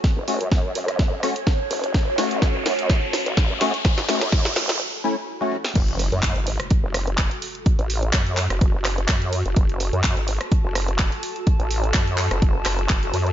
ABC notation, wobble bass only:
X:1
M:4/4
L:1/16
Q:"Swing 16ths" 1/4=126
K:F#m
V:1 name="Wobble bass" clef=bass
z F,,,2 F,,3 F,,4 z4 F,,,2 | F,,,2 A,,,3 F,,, F,,3 z2 A,,,2 F,,2 z | z F,,,2 F,,3 G,,,2 z8 | F,,,3 F,,2 G,,,2 z2 F,,,4 z3 |
z A,,,3 F,,3 F,,,2 F,,,3 F,,3 F,,, | F,,,3 F,,2 G,,,2 z2 F,,,4 z3 | z A,,,3 F,,3 F,,,3 F,,,2 F,,,2 F,,2 |]